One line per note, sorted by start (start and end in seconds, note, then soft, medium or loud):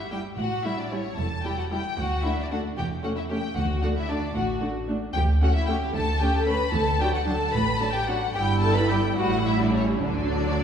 0.00 0.22 G1 soft
0.00 0.23 G2 soft
0.00 0.12 E5 soft
0.11 0.20 G3 soft
0.11 0.19 E4 soft
0.11 0.20 G4 soft
0.11 0.20 G5 soft
0.38 1.03 A1 soft
0.38 1.03 A2 soft
0.38 0.65 F#4 soft
0.38 0.64 F#5 medium
0.64 0.74 G3 soft
0.64 0.74 E4 soft
0.64 0.79 E4 soft
0.64 0.78 E5 soft
0.79 0.84 D4 soft
0.79 0.92 D5 soft
0.91 1.00 G3 soft
0.91 0.99 C#4 soft
0.91 1.01 E4 soft
0.91 1.18 C#5 soft
1.16 1.82 E1 soft
1.16 1.83 E2 soft
1.16 1.27 A4 soft
1.16 1.44 A5 soft
1.44 1.53 G3 soft
1.44 1.53 E4 soft
1.44 1.58 G4 soft
1.44 1.58 G5 soft
1.58 1.63 F#4 soft
1.58 1.64 F#5 soft
1.71 1.79 G3 soft
1.71 1.80 E4 soft
1.71 1.80 G4 soft
1.71 1.98 G5 medium
1.98 2.62 D2 soft
1.98 2.25 F#4 soft
1.98 2.25 F#5 medium
2.24 2.32 A3 soft
2.24 2.32 D4 soft
2.24 2.38 E4 soft
2.24 2.39 E5 soft
2.38 2.51 D4 soft
2.38 2.46 D5 soft
2.51 2.60 A3 soft
2.51 2.59 D4 soft
2.51 2.60 F#4 soft
2.51 2.60 F#5 medium
2.77 3.41 E1 soft
2.77 3.41 E2 medium
2.77 2.86 G4 soft
2.77 2.86 G5 soft
3.03 3.12 A3 soft
3.03 3.11 C#4 soft
3.03 3.08 F#4 soft
3.03 3.10 F#5 medium
3.17 3.22 E4 soft
3.17 3.22 E5 soft
3.30 3.39 A3 soft
3.30 3.38 C#4 soft
3.30 3.38 G4 soft
3.30 3.57 G5 medium
3.56 4.20 D2 medium
3.56 3.82 F#4 medium
3.56 3.64 F#5 medium
3.82 3.92 A3 soft
3.82 3.92 D4 soft
3.82 3.88 F#4 soft
3.82 3.88 F#5 medium
3.97 4.09 E4 soft
3.97 4.10 E5 medium
4.08 4.17 A3 soft
4.08 4.18 D4 soft
4.08 4.36 D4 soft
4.08 4.35 D5 soft
4.35 5.00 A1 soft
4.35 4.99 A2 medium
4.35 4.62 F#4 medium
4.35 4.43 F#5 medium
4.62 4.70 A3 soft
4.62 4.70 D4 soft
4.88 4.96 A3 soft
4.88 4.96 D4 soft
5.14 5.79 D2 medium
5.14 5.25 G4 medium
5.14 5.22 G5 medium
5.41 5.50 A3 soft
5.41 5.50 C#4 soft
5.41 5.48 F#4 medium
5.41 5.54 F#5 medium
5.55 5.68 E4 medium
5.55 5.68 E5 medium
5.67 5.76 A3 soft
5.67 5.76 C#4 soft
5.67 5.95 G4 medium
5.67 5.75 G5 medium
5.94 6.57 D2 medium
5.94 6.58 D2 medium
5.94 6.21 A4 medium
5.94 6.20 A5 medium
6.21 6.29 A3 soft
6.21 6.29 C#4 soft
6.21 6.34 G4 medium
6.21 6.34 G5 medium
6.34 6.48 A4 medium
6.34 6.47 A5 medium
6.46 6.54 A3 soft
6.46 6.54 C#4 soft
6.46 6.74 B4 medium
6.46 6.73 B5 medium
6.72 7.38 D2 medium
6.72 7.00 A4 medium
6.72 7.00 A5 medium
7.00 7.09 F#3 medium
7.00 7.09 D4 medium
7.00 7.05 G4 medium
7.00 7.14 G5 medium
7.14 7.19 F#4 medium
7.14 7.27 F#5 medium
7.26 7.35 F#3 soft
7.26 7.35 D4 soft
7.26 7.54 A4 medium
7.26 7.53 A5 medium
7.53 8.19 A1 medium
7.53 8.19 A2 medium
7.53 7.81 B4 medium
7.53 7.81 B5 medium
7.80 7.89 F#3 soft
7.80 7.89 D4 soft
7.80 7.94 A4 medium
7.80 7.94 A5 medium
7.94 8.08 G4 soft
7.94 8.08 G5 medium
8.06 8.16 F#3 soft
8.06 8.16 D4 soft
8.06 8.17 F#4 medium
8.06 8.34 F#5 medium
8.34 9.14 G1 medium
8.34 9.13 G2 medium
8.34 9.13 G3 medium
8.34 9.13 E4 medium
8.34 8.42 G4 medium
8.34 8.61 G5 medium
8.60 8.76 A4 medium
8.60 8.75 A5 medium
8.75 8.89 B4 medium
8.75 8.89 B5 medium
8.89 8.98 G4 medium
8.89 9.17 G5 medium
9.17 10.04 A1 medium
9.17 10.03 A2 medium
9.17 10.01 G3 soft
9.17 10.02 E4 medium
9.17 9.46 F#4 medium
9.17 9.46 F#5 medium
9.46 9.60 E4 medium
9.46 9.61 E5 medium
9.60 9.74 D4 medium
9.60 9.76 D5 medium
9.75 10.04 C#4 medium
9.75 9.84 C#5 medium
10.03 10.63 D2 medium
10.03 10.63 D3 soft
10.03 10.63 F#3 medium
10.03 10.63 D4 medium
10.03 10.63 D5 medium